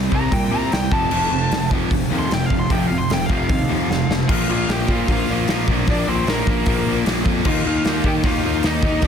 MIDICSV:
0, 0, Header, 1, 7, 480
1, 0, Start_track
1, 0, Tempo, 396040
1, 1356, Time_signature, 4, 2, 24, 8
1, 10993, End_track
2, 0, Start_track
2, 0, Title_t, "Lead electric guitar"
2, 0, Program_c, 0, 29
2, 182, Note_on_c, 0, 82, 109
2, 401, Note_off_c, 0, 82, 0
2, 401, Note_on_c, 0, 79, 106
2, 625, Note_on_c, 0, 82, 96
2, 631, Note_off_c, 0, 79, 0
2, 863, Note_off_c, 0, 82, 0
2, 886, Note_on_c, 0, 79, 95
2, 1114, Note_off_c, 0, 79, 0
2, 1123, Note_on_c, 0, 81, 118
2, 2053, Note_off_c, 0, 81, 0
2, 2651, Note_on_c, 0, 84, 92
2, 2801, Note_off_c, 0, 84, 0
2, 2825, Note_on_c, 0, 79, 95
2, 2983, Note_off_c, 0, 79, 0
2, 2983, Note_on_c, 0, 77, 93
2, 3127, Note_off_c, 0, 77, 0
2, 3144, Note_on_c, 0, 84, 91
2, 3288, Note_off_c, 0, 84, 0
2, 3295, Note_on_c, 0, 79, 94
2, 3443, Note_off_c, 0, 79, 0
2, 3485, Note_on_c, 0, 77, 99
2, 3610, Note_on_c, 0, 84, 91
2, 3619, Note_off_c, 0, 77, 0
2, 3761, Note_off_c, 0, 84, 0
2, 3800, Note_on_c, 0, 79, 92
2, 3949, Note_off_c, 0, 79, 0
2, 3949, Note_on_c, 0, 77, 96
2, 4077, Note_off_c, 0, 77, 0
2, 4092, Note_on_c, 0, 77, 109
2, 5019, Note_off_c, 0, 77, 0
2, 5191, Note_on_c, 0, 65, 82
2, 5225, Note_on_c, 0, 77, 96
2, 5419, Note_off_c, 0, 65, 0
2, 5460, Note_off_c, 0, 77, 0
2, 5463, Note_on_c, 0, 65, 82
2, 5490, Note_on_c, 0, 77, 102
2, 5676, Note_off_c, 0, 65, 0
2, 5703, Note_on_c, 0, 67, 78
2, 5712, Note_off_c, 0, 77, 0
2, 5734, Note_on_c, 0, 79, 111
2, 5916, Note_off_c, 0, 67, 0
2, 5947, Note_on_c, 0, 65, 88
2, 5967, Note_off_c, 0, 79, 0
2, 5967, Note_on_c, 0, 77, 104
2, 6158, Note_off_c, 0, 65, 0
2, 6182, Note_off_c, 0, 77, 0
2, 6184, Note_on_c, 0, 65, 87
2, 6196, Note_on_c, 0, 77, 107
2, 6844, Note_off_c, 0, 65, 0
2, 6850, Note_off_c, 0, 77, 0
2, 7152, Note_on_c, 0, 74, 99
2, 7169, Note_on_c, 0, 62, 77
2, 7370, Note_off_c, 0, 62, 0
2, 7375, Note_on_c, 0, 60, 73
2, 7376, Note_off_c, 0, 74, 0
2, 7381, Note_on_c, 0, 72, 100
2, 7591, Note_off_c, 0, 60, 0
2, 7616, Note_on_c, 0, 70, 80
2, 7618, Note_off_c, 0, 72, 0
2, 7624, Note_on_c, 0, 58, 61
2, 8518, Note_off_c, 0, 70, 0
2, 8522, Note_off_c, 0, 58, 0
2, 9045, Note_on_c, 0, 65, 85
2, 9078, Note_on_c, 0, 77, 111
2, 9244, Note_off_c, 0, 65, 0
2, 9258, Note_on_c, 0, 65, 90
2, 9282, Note_off_c, 0, 77, 0
2, 9297, Note_on_c, 0, 77, 122
2, 9713, Note_off_c, 0, 65, 0
2, 9766, Note_on_c, 0, 67, 91
2, 9781, Note_off_c, 0, 77, 0
2, 9789, Note_on_c, 0, 79, 120
2, 9829, Note_off_c, 0, 67, 0
2, 9850, Note_off_c, 0, 79, 0
2, 10013, Note_on_c, 0, 65, 92
2, 10028, Note_on_c, 0, 77, 121
2, 10451, Note_off_c, 0, 65, 0
2, 10492, Note_on_c, 0, 63, 80
2, 10505, Note_off_c, 0, 77, 0
2, 10511, Note_on_c, 0, 75, 104
2, 10930, Note_off_c, 0, 63, 0
2, 10940, Note_off_c, 0, 75, 0
2, 10993, End_track
3, 0, Start_track
3, 0, Title_t, "Distorted electric guitar"
3, 0, Program_c, 1, 30
3, 0, Note_on_c, 1, 55, 82
3, 125, Note_off_c, 1, 55, 0
3, 6166, Note_on_c, 1, 53, 103
3, 6399, Note_off_c, 1, 53, 0
3, 10935, Note_on_c, 1, 58, 107
3, 10945, Note_on_c, 1, 63, 120
3, 10993, Note_off_c, 1, 58, 0
3, 10993, Note_off_c, 1, 63, 0
3, 10993, End_track
4, 0, Start_track
4, 0, Title_t, "Distorted electric guitar"
4, 0, Program_c, 2, 30
4, 0, Note_on_c, 2, 55, 84
4, 0, Note_on_c, 2, 60, 95
4, 126, Note_off_c, 2, 55, 0
4, 142, Note_off_c, 2, 60, 0
4, 408, Note_on_c, 2, 60, 117
4, 641, Note_off_c, 2, 60, 0
4, 881, Note_on_c, 2, 60, 96
4, 1622, Note_on_c, 2, 53, 99
4, 1846, Note_off_c, 2, 53, 0
4, 1851, Note_on_c, 2, 53, 88
4, 2095, Note_off_c, 2, 53, 0
4, 2339, Note_on_c, 2, 53, 102
4, 2576, Note_off_c, 2, 53, 0
4, 2824, Note_on_c, 2, 53, 105
4, 3054, Note_off_c, 2, 53, 0
4, 3059, Note_on_c, 2, 53, 99
4, 3294, Note_off_c, 2, 53, 0
4, 3543, Note_on_c, 2, 53, 86
4, 3767, Note_off_c, 2, 53, 0
4, 3781, Note_on_c, 2, 53, 93
4, 4001, Note_off_c, 2, 53, 0
4, 4263, Note_on_c, 2, 53, 107
4, 4494, Note_off_c, 2, 53, 0
4, 4737, Note_on_c, 2, 53, 99
4, 4964, Note_off_c, 2, 53, 0
4, 4979, Note_on_c, 2, 53, 94
4, 5123, Note_off_c, 2, 60, 0
4, 5196, Note_off_c, 2, 53, 0
4, 10993, End_track
5, 0, Start_track
5, 0, Title_t, "Overdriven electric guitar"
5, 0, Program_c, 3, 29
5, 118, Note_on_c, 3, 48, 84
5, 119, Note_on_c, 3, 55, 83
5, 128, Note_on_c, 3, 60, 91
5, 353, Note_off_c, 3, 55, 0
5, 359, Note_off_c, 3, 48, 0
5, 366, Note_off_c, 3, 60, 0
5, 367, Note_on_c, 3, 55, 80
5, 373, Note_on_c, 3, 48, 74
5, 597, Note_off_c, 3, 55, 0
5, 600, Note_off_c, 3, 48, 0
5, 616, Note_on_c, 3, 48, 89
5, 624, Note_on_c, 3, 55, 98
5, 629, Note_on_c, 3, 60, 94
5, 851, Note_off_c, 3, 48, 0
5, 855, Note_off_c, 3, 55, 0
5, 857, Note_off_c, 3, 60, 0
5, 867, Note_on_c, 3, 48, 78
5, 879, Note_on_c, 3, 55, 89
5, 1087, Note_off_c, 3, 48, 0
5, 1093, Note_off_c, 3, 55, 0
5, 1113, Note_on_c, 3, 41, 101
5, 1124, Note_on_c, 3, 48, 106
5, 1137, Note_on_c, 3, 53, 113
5, 1340, Note_off_c, 3, 41, 0
5, 1346, Note_off_c, 3, 48, 0
5, 1352, Note_off_c, 3, 53, 0
5, 1354, Note_on_c, 3, 41, 93
5, 1363, Note_on_c, 3, 48, 102
5, 1375, Note_on_c, 3, 53, 110
5, 1581, Note_off_c, 3, 41, 0
5, 1585, Note_off_c, 3, 48, 0
5, 1591, Note_off_c, 3, 53, 0
5, 1597, Note_on_c, 3, 41, 72
5, 1600, Note_on_c, 3, 48, 77
5, 1813, Note_off_c, 3, 41, 0
5, 1815, Note_off_c, 3, 48, 0
5, 1850, Note_on_c, 3, 41, 88
5, 1863, Note_on_c, 3, 48, 91
5, 2060, Note_off_c, 3, 41, 0
5, 2066, Note_off_c, 3, 48, 0
5, 2084, Note_on_c, 3, 41, 91
5, 2095, Note_on_c, 3, 48, 98
5, 2101, Note_on_c, 3, 53, 96
5, 2307, Note_off_c, 3, 41, 0
5, 2312, Note_off_c, 3, 48, 0
5, 2315, Note_off_c, 3, 53, 0
5, 2345, Note_on_c, 3, 48, 89
5, 2346, Note_on_c, 3, 41, 75
5, 2537, Note_off_c, 3, 41, 0
5, 2548, Note_off_c, 3, 48, 0
5, 2551, Note_on_c, 3, 41, 93
5, 2566, Note_on_c, 3, 53, 97
5, 2568, Note_on_c, 3, 48, 94
5, 2778, Note_off_c, 3, 41, 0
5, 2784, Note_off_c, 3, 48, 0
5, 2789, Note_off_c, 3, 53, 0
5, 2792, Note_on_c, 3, 41, 83
5, 2798, Note_on_c, 3, 48, 99
5, 3012, Note_off_c, 3, 41, 0
5, 3015, Note_off_c, 3, 48, 0
5, 3035, Note_on_c, 3, 41, 81
5, 3037, Note_on_c, 3, 48, 92
5, 3254, Note_off_c, 3, 41, 0
5, 3255, Note_off_c, 3, 48, 0
5, 3275, Note_on_c, 3, 41, 93
5, 3278, Note_on_c, 3, 48, 102
5, 3290, Note_on_c, 3, 53, 103
5, 3495, Note_off_c, 3, 41, 0
5, 3499, Note_off_c, 3, 48, 0
5, 3510, Note_on_c, 3, 41, 69
5, 3511, Note_off_c, 3, 53, 0
5, 3514, Note_on_c, 3, 48, 80
5, 3732, Note_off_c, 3, 41, 0
5, 3733, Note_off_c, 3, 48, 0
5, 3757, Note_on_c, 3, 41, 81
5, 3760, Note_on_c, 3, 48, 103
5, 3975, Note_off_c, 3, 41, 0
5, 3977, Note_off_c, 3, 48, 0
5, 3998, Note_on_c, 3, 41, 95
5, 4008, Note_on_c, 3, 53, 85
5, 4009, Note_on_c, 3, 48, 98
5, 4225, Note_off_c, 3, 41, 0
5, 4231, Note_off_c, 3, 48, 0
5, 4231, Note_off_c, 3, 53, 0
5, 4239, Note_on_c, 3, 41, 78
5, 4245, Note_on_c, 3, 48, 88
5, 4456, Note_off_c, 3, 41, 0
5, 4459, Note_off_c, 3, 48, 0
5, 4470, Note_on_c, 3, 41, 98
5, 4480, Note_on_c, 3, 48, 97
5, 4493, Note_on_c, 3, 53, 100
5, 4702, Note_off_c, 3, 41, 0
5, 4707, Note_off_c, 3, 48, 0
5, 4713, Note_off_c, 3, 53, 0
5, 4717, Note_on_c, 3, 41, 80
5, 4724, Note_on_c, 3, 48, 94
5, 4936, Note_off_c, 3, 41, 0
5, 4939, Note_off_c, 3, 48, 0
5, 4986, Note_on_c, 3, 41, 82
5, 4991, Note_on_c, 3, 48, 85
5, 5190, Note_off_c, 3, 41, 0
5, 5193, Note_off_c, 3, 48, 0
5, 5208, Note_on_c, 3, 46, 98
5, 5216, Note_on_c, 3, 53, 103
5, 5221, Note_on_c, 3, 58, 98
5, 5434, Note_off_c, 3, 46, 0
5, 5436, Note_off_c, 3, 53, 0
5, 5439, Note_on_c, 3, 46, 81
5, 5441, Note_on_c, 3, 53, 99
5, 5449, Note_off_c, 3, 58, 0
5, 5453, Note_on_c, 3, 58, 91
5, 5696, Note_off_c, 3, 46, 0
5, 5701, Note_on_c, 3, 46, 91
5, 5706, Note_off_c, 3, 53, 0
5, 5710, Note_off_c, 3, 58, 0
5, 5711, Note_on_c, 3, 53, 98
5, 5714, Note_on_c, 3, 58, 104
5, 5941, Note_off_c, 3, 46, 0
5, 5946, Note_on_c, 3, 46, 79
5, 5960, Note_off_c, 3, 53, 0
5, 5960, Note_off_c, 3, 58, 0
5, 5964, Note_on_c, 3, 58, 87
5, 5965, Note_on_c, 3, 53, 90
5, 6183, Note_off_c, 3, 46, 0
5, 6198, Note_on_c, 3, 46, 95
5, 6200, Note_off_c, 3, 53, 0
5, 6210, Note_off_c, 3, 58, 0
5, 6215, Note_on_c, 3, 53, 97
5, 6215, Note_on_c, 3, 58, 97
5, 6432, Note_off_c, 3, 46, 0
5, 6440, Note_off_c, 3, 53, 0
5, 6447, Note_on_c, 3, 46, 87
5, 6454, Note_on_c, 3, 53, 86
5, 6457, Note_off_c, 3, 58, 0
5, 6462, Note_on_c, 3, 58, 99
5, 6667, Note_off_c, 3, 46, 0
5, 6672, Note_off_c, 3, 53, 0
5, 6682, Note_on_c, 3, 46, 100
5, 6685, Note_off_c, 3, 58, 0
5, 6686, Note_on_c, 3, 53, 86
5, 6690, Note_on_c, 3, 58, 101
5, 6885, Note_off_c, 3, 46, 0
5, 6900, Note_on_c, 3, 46, 99
5, 6904, Note_off_c, 3, 53, 0
5, 6919, Note_on_c, 3, 53, 98
5, 6921, Note_off_c, 3, 58, 0
5, 6926, Note_on_c, 3, 58, 100
5, 7120, Note_off_c, 3, 46, 0
5, 7124, Note_off_c, 3, 53, 0
5, 7135, Note_on_c, 3, 46, 101
5, 7139, Note_on_c, 3, 53, 106
5, 7148, Note_off_c, 3, 58, 0
5, 7153, Note_on_c, 3, 58, 106
5, 7358, Note_off_c, 3, 46, 0
5, 7367, Note_off_c, 3, 53, 0
5, 7372, Note_on_c, 3, 46, 91
5, 7382, Note_off_c, 3, 58, 0
5, 7382, Note_on_c, 3, 53, 93
5, 7386, Note_on_c, 3, 58, 93
5, 7592, Note_off_c, 3, 46, 0
5, 7597, Note_off_c, 3, 53, 0
5, 7607, Note_on_c, 3, 46, 94
5, 7612, Note_on_c, 3, 53, 96
5, 7621, Note_off_c, 3, 58, 0
5, 7626, Note_on_c, 3, 58, 110
5, 7845, Note_off_c, 3, 46, 0
5, 7845, Note_off_c, 3, 53, 0
5, 7854, Note_off_c, 3, 58, 0
5, 7858, Note_on_c, 3, 58, 100
5, 7859, Note_on_c, 3, 46, 80
5, 7859, Note_on_c, 3, 53, 87
5, 8059, Note_off_c, 3, 53, 0
5, 8063, Note_off_c, 3, 46, 0
5, 8074, Note_on_c, 3, 53, 106
5, 8077, Note_on_c, 3, 46, 94
5, 8082, Note_off_c, 3, 58, 0
5, 8086, Note_on_c, 3, 58, 112
5, 8311, Note_off_c, 3, 46, 0
5, 8315, Note_off_c, 3, 53, 0
5, 8325, Note_on_c, 3, 46, 80
5, 8330, Note_on_c, 3, 53, 94
5, 8340, Note_off_c, 3, 58, 0
5, 8344, Note_on_c, 3, 58, 97
5, 8528, Note_off_c, 3, 53, 0
5, 8532, Note_off_c, 3, 46, 0
5, 8542, Note_on_c, 3, 53, 91
5, 8545, Note_off_c, 3, 58, 0
5, 8546, Note_on_c, 3, 46, 85
5, 8550, Note_on_c, 3, 58, 105
5, 8765, Note_off_c, 3, 46, 0
5, 8771, Note_off_c, 3, 53, 0
5, 8780, Note_on_c, 3, 46, 93
5, 8785, Note_off_c, 3, 58, 0
5, 8785, Note_on_c, 3, 53, 104
5, 8790, Note_on_c, 3, 58, 98
5, 9014, Note_off_c, 3, 46, 0
5, 9017, Note_off_c, 3, 53, 0
5, 9028, Note_off_c, 3, 58, 0
5, 9028, Note_on_c, 3, 58, 110
5, 9029, Note_on_c, 3, 51, 97
5, 9047, Note_on_c, 3, 63, 105
5, 9256, Note_off_c, 3, 51, 0
5, 9261, Note_on_c, 3, 51, 86
5, 9267, Note_off_c, 3, 58, 0
5, 9267, Note_off_c, 3, 63, 0
5, 9272, Note_on_c, 3, 58, 90
5, 9272, Note_on_c, 3, 63, 105
5, 9513, Note_off_c, 3, 51, 0
5, 9514, Note_off_c, 3, 58, 0
5, 9518, Note_on_c, 3, 51, 87
5, 9519, Note_on_c, 3, 58, 97
5, 9520, Note_off_c, 3, 63, 0
5, 9525, Note_on_c, 3, 63, 104
5, 9727, Note_off_c, 3, 51, 0
5, 9732, Note_on_c, 3, 51, 81
5, 9738, Note_off_c, 3, 58, 0
5, 9743, Note_on_c, 3, 58, 85
5, 9748, Note_off_c, 3, 63, 0
5, 9753, Note_on_c, 3, 63, 97
5, 9967, Note_off_c, 3, 51, 0
5, 9981, Note_on_c, 3, 51, 102
5, 9986, Note_off_c, 3, 58, 0
5, 9994, Note_off_c, 3, 63, 0
5, 9999, Note_on_c, 3, 63, 108
5, 10000, Note_on_c, 3, 58, 98
5, 10207, Note_off_c, 3, 51, 0
5, 10207, Note_off_c, 3, 58, 0
5, 10222, Note_on_c, 3, 51, 80
5, 10222, Note_on_c, 3, 58, 87
5, 10225, Note_off_c, 3, 63, 0
5, 10230, Note_on_c, 3, 63, 97
5, 10453, Note_off_c, 3, 51, 0
5, 10468, Note_on_c, 3, 51, 92
5, 10473, Note_off_c, 3, 58, 0
5, 10476, Note_off_c, 3, 63, 0
5, 10481, Note_on_c, 3, 63, 102
5, 10488, Note_on_c, 3, 58, 94
5, 10719, Note_off_c, 3, 51, 0
5, 10726, Note_off_c, 3, 58, 0
5, 10734, Note_on_c, 3, 51, 87
5, 10740, Note_on_c, 3, 58, 109
5, 10743, Note_off_c, 3, 63, 0
5, 10748, Note_on_c, 3, 63, 109
5, 10928, Note_off_c, 3, 51, 0
5, 10942, Note_on_c, 3, 51, 93
5, 10943, Note_off_c, 3, 58, 0
5, 10959, Note_off_c, 3, 63, 0
5, 10993, Note_off_c, 3, 51, 0
5, 10993, End_track
6, 0, Start_track
6, 0, Title_t, "Picked electric bass"
6, 0, Program_c, 4, 34
6, 148, Note_on_c, 4, 36, 84
6, 317, Note_off_c, 4, 36, 0
6, 381, Note_on_c, 4, 46, 91
6, 721, Note_off_c, 4, 46, 0
6, 883, Note_on_c, 4, 36, 96
6, 1048, Note_off_c, 4, 36, 0
6, 1110, Note_on_c, 4, 29, 88
6, 1279, Note_off_c, 4, 29, 0
6, 1354, Note_on_c, 4, 29, 97
6, 1522, Note_off_c, 4, 29, 0
6, 1594, Note_on_c, 4, 29, 83
6, 1763, Note_off_c, 4, 29, 0
6, 1840, Note_on_c, 4, 29, 86
6, 2174, Note_off_c, 4, 29, 0
6, 2317, Note_on_c, 4, 29, 94
6, 2485, Note_off_c, 4, 29, 0
6, 2553, Note_on_c, 4, 39, 94
6, 2723, Note_off_c, 4, 39, 0
6, 2789, Note_on_c, 4, 29, 97
6, 2960, Note_off_c, 4, 29, 0
6, 3042, Note_on_c, 4, 29, 92
6, 3209, Note_off_c, 4, 29, 0
6, 3277, Note_on_c, 4, 29, 95
6, 3613, Note_off_c, 4, 29, 0
6, 3752, Note_on_c, 4, 29, 95
6, 3923, Note_off_c, 4, 29, 0
6, 3994, Note_on_c, 4, 29, 89
6, 4164, Note_off_c, 4, 29, 0
6, 4232, Note_on_c, 4, 39, 97
6, 4570, Note_off_c, 4, 39, 0
6, 4701, Note_on_c, 4, 29, 95
6, 4876, Note_off_c, 4, 29, 0
6, 4955, Note_on_c, 4, 29, 91
6, 5125, Note_off_c, 4, 29, 0
6, 5192, Note_on_c, 4, 34, 98
6, 5376, Note_off_c, 4, 34, 0
6, 5428, Note_on_c, 4, 34, 96
6, 5613, Note_off_c, 4, 34, 0
6, 5680, Note_on_c, 4, 34, 89
6, 5860, Note_off_c, 4, 34, 0
6, 5919, Note_on_c, 4, 46, 90
6, 6100, Note_off_c, 4, 46, 0
6, 6157, Note_on_c, 4, 34, 93
6, 6338, Note_off_c, 4, 34, 0
6, 6415, Note_on_c, 4, 34, 99
6, 6589, Note_off_c, 4, 34, 0
6, 6651, Note_on_c, 4, 34, 92
6, 6827, Note_off_c, 4, 34, 0
6, 6883, Note_on_c, 4, 34, 90
6, 7062, Note_off_c, 4, 34, 0
6, 7114, Note_on_c, 4, 34, 103
6, 7296, Note_off_c, 4, 34, 0
6, 7362, Note_on_c, 4, 34, 98
6, 7541, Note_off_c, 4, 34, 0
6, 7589, Note_on_c, 4, 34, 92
6, 7773, Note_off_c, 4, 34, 0
6, 7842, Note_on_c, 4, 34, 99
6, 8021, Note_off_c, 4, 34, 0
6, 8082, Note_on_c, 4, 34, 100
6, 8261, Note_off_c, 4, 34, 0
6, 8319, Note_on_c, 4, 34, 100
6, 8499, Note_off_c, 4, 34, 0
6, 8564, Note_on_c, 4, 34, 97
6, 8742, Note_off_c, 4, 34, 0
6, 8794, Note_on_c, 4, 41, 93
6, 8975, Note_off_c, 4, 41, 0
6, 9040, Note_on_c, 4, 39, 106
6, 9219, Note_off_c, 4, 39, 0
6, 9289, Note_on_c, 4, 39, 94
6, 9464, Note_off_c, 4, 39, 0
6, 9517, Note_on_c, 4, 39, 98
6, 9697, Note_off_c, 4, 39, 0
6, 9748, Note_on_c, 4, 51, 95
6, 9931, Note_off_c, 4, 51, 0
6, 9988, Note_on_c, 4, 39, 96
6, 10171, Note_off_c, 4, 39, 0
6, 10251, Note_on_c, 4, 39, 99
6, 10425, Note_off_c, 4, 39, 0
6, 10480, Note_on_c, 4, 39, 102
6, 10658, Note_off_c, 4, 39, 0
6, 10698, Note_on_c, 4, 39, 94
6, 10884, Note_off_c, 4, 39, 0
6, 10930, Note_on_c, 4, 39, 102
6, 10993, Note_off_c, 4, 39, 0
6, 10993, End_track
7, 0, Start_track
7, 0, Title_t, "Drums"
7, 144, Note_on_c, 9, 36, 91
7, 265, Note_off_c, 9, 36, 0
7, 388, Note_on_c, 9, 36, 115
7, 393, Note_on_c, 9, 46, 62
7, 509, Note_off_c, 9, 36, 0
7, 514, Note_off_c, 9, 46, 0
7, 873, Note_on_c, 9, 46, 57
7, 888, Note_on_c, 9, 38, 107
7, 994, Note_off_c, 9, 46, 0
7, 1009, Note_off_c, 9, 38, 0
7, 1109, Note_on_c, 9, 36, 103
7, 1230, Note_off_c, 9, 36, 0
7, 1345, Note_on_c, 9, 49, 106
7, 1467, Note_off_c, 9, 49, 0
7, 1836, Note_on_c, 9, 46, 68
7, 1850, Note_on_c, 9, 38, 117
7, 1957, Note_off_c, 9, 46, 0
7, 1971, Note_off_c, 9, 38, 0
7, 2073, Note_on_c, 9, 36, 92
7, 2194, Note_off_c, 9, 36, 0
7, 2314, Note_on_c, 9, 36, 106
7, 2324, Note_on_c, 9, 46, 67
7, 2435, Note_off_c, 9, 36, 0
7, 2446, Note_off_c, 9, 46, 0
7, 2801, Note_on_c, 9, 46, 64
7, 2815, Note_on_c, 9, 38, 114
7, 2922, Note_off_c, 9, 46, 0
7, 2937, Note_off_c, 9, 38, 0
7, 3034, Note_on_c, 9, 36, 91
7, 3155, Note_off_c, 9, 36, 0
7, 3275, Note_on_c, 9, 36, 112
7, 3276, Note_on_c, 9, 46, 64
7, 3396, Note_off_c, 9, 36, 0
7, 3397, Note_off_c, 9, 46, 0
7, 3757, Note_on_c, 9, 46, 64
7, 3772, Note_on_c, 9, 38, 115
7, 3878, Note_off_c, 9, 46, 0
7, 3893, Note_off_c, 9, 38, 0
7, 3994, Note_on_c, 9, 36, 83
7, 4115, Note_off_c, 9, 36, 0
7, 4233, Note_on_c, 9, 46, 64
7, 4236, Note_on_c, 9, 36, 114
7, 4354, Note_off_c, 9, 46, 0
7, 4357, Note_off_c, 9, 36, 0
7, 4738, Note_on_c, 9, 38, 68
7, 4859, Note_off_c, 9, 38, 0
7, 4979, Note_on_c, 9, 38, 89
7, 5100, Note_off_c, 9, 38, 0
7, 5201, Note_on_c, 9, 36, 125
7, 5202, Note_on_c, 9, 49, 127
7, 5322, Note_off_c, 9, 36, 0
7, 5323, Note_off_c, 9, 49, 0
7, 5682, Note_on_c, 9, 46, 73
7, 5696, Note_on_c, 9, 38, 116
7, 5803, Note_off_c, 9, 46, 0
7, 5817, Note_off_c, 9, 38, 0
7, 5919, Note_on_c, 9, 36, 95
7, 6041, Note_off_c, 9, 36, 0
7, 6159, Note_on_c, 9, 46, 72
7, 6161, Note_on_c, 9, 36, 117
7, 6280, Note_off_c, 9, 46, 0
7, 6282, Note_off_c, 9, 36, 0
7, 6638, Note_on_c, 9, 46, 72
7, 6653, Note_on_c, 9, 38, 117
7, 6759, Note_off_c, 9, 46, 0
7, 6774, Note_off_c, 9, 38, 0
7, 6881, Note_on_c, 9, 36, 92
7, 7002, Note_off_c, 9, 36, 0
7, 7117, Note_on_c, 9, 46, 73
7, 7123, Note_on_c, 9, 36, 124
7, 7238, Note_off_c, 9, 46, 0
7, 7244, Note_off_c, 9, 36, 0
7, 7600, Note_on_c, 9, 46, 70
7, 7614, Note_on_c, 9, 38, 118
7, 7721, Note_off_c, 9, 46, 0
7, 7735, Note_off_c, 9, 38, 0
7, 7842, Note_on_c, 9, 36, 99
7, 7963, Note_off_c, 9, 36, 0
7, 8070, Note_on_c, 9, 46, 65
7, 8078, Note_on_c, 9, 36, 121
7, 8191, Note_off_c, 9, 46, 0
7, 8199, Note_off_c, 9, 36, 0
7, 8558, Note_on_c, 9, 46, 68
7, 8573, Note_on_c, 9, 38, 122
7, 8679, Note_off_c, 9, 46, 0
7, 8694, Note_off_c, 9, 38, 0
7, 8795, Note_on_c, 9, 36, 94
7, 8916, Note_off_c, 9, 36, 0
7, 9027, Note_on_c, 9, 49, 116
7, 9033, Note_on_c, 9, 36, 123
7, 9148, Note_off_c, 9, 49, 0
7, 9154, Note_off_c, 9, 36, 0
7, 9508, Note_on_c, 9, 46, 74
7, 9523, Note_on_c, 9, 38, 124
7, 9629, Note_off_c, 9, 46, 0
7, 9644, Note_off_c, 9, 38, 0
7, 9745, Note_on_c, 9, 36, 93
7, 9866, Note_off_c, 9, 36, 0
7, 9980, Note_on_c, 9, 46, 73
7, 9983, Note_on_c, 9, 36, 121
7, 10101, Note_off_c, 9, 46, 0
7, 10105, Note_off_c, 9, 36, 0
7, 10459, Note_on_c, 9, 46, 66
7, 10474, Note_on_c, 9, 38, 119
7, 10580, Note_off_c, 9, 46, 0
7, 10595, Note_off_c, 9, 38, 0
7, 10696, Note_on_c, 9, 36, 98
7, 10818, Note_off_c, 9, 36, 0
7, 10929, Note_on_c, 9, 46, 76
7, 10937, Note_on_c, 9, 36, 125
7, 10993, Note_off_c, 9, 36, 0
7, 10993, Note_off_c, 9, 46, 0
7, 10993, End_track
0, 0, End_of_file